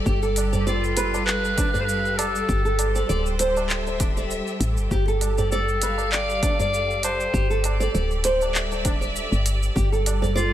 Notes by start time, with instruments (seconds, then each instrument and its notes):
Already playing: string section G3 G4 A4 D5
0.06 fm bass G1, nylon-string guitar G4, kick, shaker
0.23 nylon-string guitar A4, shaker
0.36 closed hi-hat, tabla na, tabla tin, shaker
0.52 string section B4, nylon-string guitar D5, tabla tin, tabla ge, shaker
0.60 clarinet G4
0.67 clarinet F4, nylon-string guitar D5, shaker
0.84 shaker
0.97 nylon-string guitar B4, closed hi-hat, tabla tin, shaker
1.14 string section F5, tabla na, shaker
1.26 clarinet B4, clap, shaker
1.45 shaker
1.57 nylon-string guitar D4, kick, closed hi-hat, tabla na, shaker
1.72 clarinet B4, nylon-string guitar D5, tabla tin, tabla ge, shaker
1.80 clarinet C5
1.85 clarinet B4
1.89 shaker
2.05 shaker
2.17 clarinet A4, closed hi-hat, tabla na, shaker
2.35 shaker
2.49 fm bass G1, nylon-string guitar G4, kick, shaker
2.65 nylon-string guitar A4, shaker
2.75 string section C5, closed hi-hat, tabla na, tabla tin
2.79 shaker
2.95 nylon-string guitar D5, tabla tin, shaker
3.09 fm bass D1, nylon-string guitar D5, shaker
3.26 shaker
3.39 nylon-string guitar C5, closed hi-hat, tabla tin, shaker
3.57 string section E5, tabla na, shaker
3.69 clap, shaker
3.87 tabla tin, shaker
4.00 nylon-string guitar D4, kick, closed hi-hat, tabla na, shaker
4.17 nylon-string guitar D5, tabla tin, shaker
4.31 shaker
4.47 shaker
4.60 fm bass A1, closed hi-hat, shaker
4.77 fm bass G1, shaker
4.91 fm bass G1, nylon-string guitar G4, kick, shaker
5.08 nylon-string guitar A4, shaker
5.21 closed hi-hat, tabla na, tabla tin, shaker
5.38 nylon-string guitar D5, tabla tin, tabla ge, shaker
5.51 clarinet A4, nylon-string guitar D5, shaker
5.68 shaker
5.79 nylon-string guitar B4, string section F5, closed hi-hat, tabla tin, shaker
5.98 tabla na, shaker
6.12 clarinet D5, clap, shaker
6.30 shaker
6.43 nylon-string guitar D4, kick, closed hi-hat, tabla na, shaker
6.59 nylon-string guitar D5, clarinet D5, tabla tin, tabla ge, shaker
6.74 shaker
6.91 shaker
7.03 clarinet C5, closed hi-hat, tabla na, shaker
7.20 shaker
7.34 fm bass G1, nylon-string guitar G4, kick, shaker
7.50 nylon-string guitar A4, string section D5, shaker
7.64 closed hi-hat, tabla na, tabla tin, shaker
7.80 nylon-string guitar D5, tabla tin, shaker
7.95 fm bass D1, nylon-string guitar D5, shaker
8.11 shaker
8.24 nylon-string guitar C5, closed hi-hat, tabla tin, shaker
8.41 string section E5, tabla na, shaker
8.55 clap, shaker
8.72 tabla tin, shaker
8.85 nylon-string guitar D4, kick, closed hi-hat, tabla na, shaker
9.01 nylon-string guitar D5, tabla tin, shaker
9.16 shaker
9.32 fm bass G1, shaker
9.46 closed hi-hat, shaker
9.63 shaker
9.76 fm bass G1, string section G3, nylon-string guitar G4, kick, shaker
9.92 nylon-string guitar A4, shaker
10.06 closed hi-hat, tabla na, tabla tin, shaker
10.22 nylon-string guitar D5, tabla tin, tabla ge, shaker
10.36 clarinet F4, nylon-string guitar D5, shaker